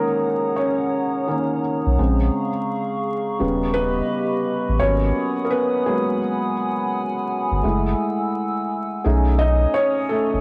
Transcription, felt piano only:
0, 0, Header, 1, 2, 480
1, 0, Start_track
1, 0, Key_signature, 5, "major"
1, 0, Tempo, 705882
1, 1351, Time_signature, 4, 2, 24, 8
1, 7077, End_track
2, 0, Start_track
2, 0, Title_t, "Felt piano"
2, 0, Program_c, 0, 0
2, 0, Control_c, 0, 64, 127
2, 0, Note_on_c, 0, 51, 59
2, 0, Note_on_c, 0, 56, 61
2, 0, Note_on_c, 0, 58, 63
2, 0, Note_on_c, 0, 61, 61
2, 0, Note_on_c, 0, 68, 76
2, 0, Note_on_c, 0, 70, 84
2, 367, Note_off_c, 0, 58, 0
2, 382, Note_on_c, 0, 73, 76
2, 398, Note_off_c, 0, 61, 0
2, 398, Note_on_c, 0, 61, 61
2, 401, Note_off_c, 0, 70, 0
2, 862, Note_off_c, 0, 61, 0
2, 867, Note_off_c, 0, 51, 0
2, 867, Note_on_c, 0, 51, 52
2, 869, Note_on_c, 0, 58, 48
2, 872, Note_on_c, 0, 61, 53
2, 1080, Note_off_c, 0, 73, 0
2, 1085, Note_off_c, 0, 51, 0
2, 1086, Note_off_c, 0, 58, 0
2, 1088, Note_off_c, 0, 61, 0
2, 1347, Note_on_c, 0, 49, 50
2, 1350, Note_off_c, 0, 56, 0
2, 1350, Note_on_c, 0, 56, 44
2, 1355, Note_on_c, 0, 60, 53
2, 1361, Control_c, 0, 64, 0
2, 1363, Note_off_c, 0, 68, 0
2, 1480, Control_c, 0, 64, 127
2, 1692, Note_off_c, 0, 49, 0
2, 1694, Note_off_c, 0, 56, 0
2, 1696, Note_off_c, 0, 60, 0
2, 2307, Note_on_c, 0, 49, 54
2, 2310, Note_on_c, 0, 55, 51
2, 2315, Note_on_c, 0, 59, 63
2, 2319, Control_c, 0, 64, 0
2, 2455, Control_c, 0, 64, 127
2, 2541, Note_on_c, 0, 71, 107
2, 2546, Note_off_c, 0, 59, 0
2, 2556, Note_on_c, 0, 59, 75
2, 2652, Note_off_c, 0, 49, 0
2, 2653, Note_off_c, 0, 55, 0
2, 3246, Note_off_c, 0, 59, 0
2, 3261, Note_on_c, 0, 73, 95
2, 3265, Note_on_c, 0, 54, 51
2, 3270, Note_on_c, 0, 58, 45
2, 3274, Note_on_c, 0, 59, 57
2, 3276, Note_on_c, 0, 61, 74
2, 3281, Control_c, 0, 64, 0
2, 3288, Note_off_c, 0, 71, 0
2, 3379, Control_c, 0, 64, 127
2, 3611, Note_off_c, 0, 54, 0
2, 3613, Note_off_c, 0, 58, 0
2, 3615, Note_off_c, 0, 59, 0
2, 3691, Note_off_c, 0, 61, 0
2, 3704, Note_on_c, 0, 70, 63
2, 3724, Note_off_c, 0, 73, 0
2, 3743, Note_on_c, 0, 71, 94
2, 3745, Note_off_c, 0, 70, 0
2, 3757, Note_on_c, 0, 59, 72
2, 3978, Note_off_c, 0, 59, 0
2, 3985, Note_on_c, 0, 68, 71
2, 3990, Note_on_c, 0, 54, 47
2, 3992, Note_on_c, 0, 58, 44
2, 3994, Note_on_c, 0, 59, 48
2, 3995, Note_off_c, 0, 71, 0
2, 3997, Note_on_c, 0, 56, 61
2, 4207, Note_off_c, 0, 54, 0
2, 4208, Note_off_c, 0, 58, 0
2, 4209, Note_off_c, 0, 59, 0
2, 4441, Note_off_c, 0, 68, 0
2, 4447, Note_off_c, 0, 56, 0
2, 5189, Note_on_c, 0, 56, 52
2, 5194, Note_on_c, 0, 57, 44
2, 5198, Note_on_c, 0, 64, 51
2, 5201, Control_c, 0, 64, 0
2, 5333, Control_c, 0, 64, 127
2, 6123, Note_off_c, 0, 56, 0
2, 6126, Note_off_c, 0, 57, 0
2, 6128, Note_off_c, 0, 64, 0
2, 6150, Note_on_c, 0, 68, 53
2, 6152, Note_on_c, 0, 57, 52
2, 6154, Note_on_c, 0, 61, 49
2, 6158, Note_on_c, 0, 63, 55
2, 6161, Control_c, 0, 64, 0
2, 6270, Control_c, 0, 64, 127
2, 6382, Note_on_c, 0, 75, 92
2, 6388, Note_off_c, 0, 63, 0
2, 6398, Note_on_c, 0, 63, 79
2, 6618, Note_off_c, 0, 63, 0
2, 6623, Note_on_c, 0, 73, 105
2, 6628, Note_off_c, 0, 61, 0
2, 6634, Note_off_c, 0, 75, 0
2, 6638, Note_on_c, 0, 61, 81
2, 6858, Note_off_c, 0, 61, 0
2, 6862, Note_on_c, 0, 69, 86
2, 6867, Note_off_c, 0, 57, 0
2, 6874, Note_off_c, 0, 73, 0
2, 6877, Note_on_c, 0, 57, 69
2, 7077, Note_off_c, 0, 57, 0
2, 7077, Note_off_c, 0, 68, 0
2, 7077, Note_off_c, 0, 69, 0
2, 7077, End_track
0, 0, End_of_file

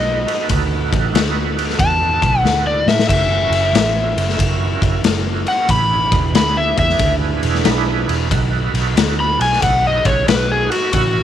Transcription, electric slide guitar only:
0, 0, Header, 1, 2, 480
1, 0, Start_track
1, 0, Tempo, 647948
1, 371, Time_signature, 4, 2, 24, 8
1, 3252, Tempo, 654308
1, 8270, End_track
2, 0, Start_track
2, 0, Title_t, "Electric slide guitar"
2, 0, Program_c, 0, 29
2, 0, Note_on_c, 0, 75, 109
2, 346, Note_off_c, 0, 75, 0
2, 1334, Note_on_c, 0, 81, 108
2, 1778, Note_off_c, 0, 81, 0
2, 1778, Note_on_c, 0, 78, 108
2, 1953, Note_off_c, 0, 78, 0
2, 1979, Note_on_c, 0, 74, 93
2, 2130, Note_off_c, 0, 74, 0
2, 2132, Note_on_c, 0, 76, 87
2, 2281, Note_off_c, 0, 76, 0
2, 2290, Note_on_c, 0, 76, 93
2, 3702, Note_off_c, 0, 76, 0
2, 4053, Note_on_c, 0, 78, 90
2, 4207, Note_off_c, 0, 78, 0
2, 4217, Note_on_c, 0, 83, 98
2, 4679, Note_off_c, 0, 83, 0
2, 4698, Note_on_c, 0, 83, 91
2, 4849, Note_off_c, 0, 83, 0
2, 4852, Note_on_c, 0, 76, 102
2, 5006, Note_off_c, 0, 76, 0
2, 5013, Note_on_c, 0, 76, 97
2, 5269, Note_off_c, 0, 76, 0
2, 6782, Note_on_c, 0, 83, 100
2, 6932, Note_off_c, 0, 83, 0
2, 6940, Note_on_c, 0, 80, 94
2, 7091, Note_off_c, 0, 80, 0
2, 7097, Note_on_c, 0, 78, 94
2, 7250, Note_off_c, 0, 78, 0
2, 7272, Note_on_c, 0, 75, 104
2, 7411, Note_on_c, 0, 73, 92
2, 7418, Note_off_c, 0, 75, 0
2, 7568, Note_off_c, 0, 73, 0
2, 7578, Note_on_c, 0, 71, 99
2, 7731, Note_off_c, 0, 71, 0
2, 7747, Note_on_c, 0, 68, 96
2, 7895, Note_off_c, 0, 68, 0
2, 7898, Note_on_c, 0, 66, 88
2, 8050, Note_off_c, 0, 66, 0
2, 8058, Note_on_c, 0, 66, 95
2, 8270, Note_off_c, 0, 66, 0
2, 8270, End_track
0, 0, End_of_file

